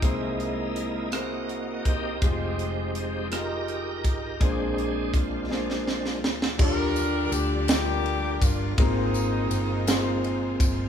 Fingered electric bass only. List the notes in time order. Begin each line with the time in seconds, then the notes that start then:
0.02 C2
2.22 F1
4.05 G#1
4.41 A#1
6.23 D2
6.59 D#2
7.32 D2
8.42 G1
8.78 G#1
9.51 G1
10.60 G1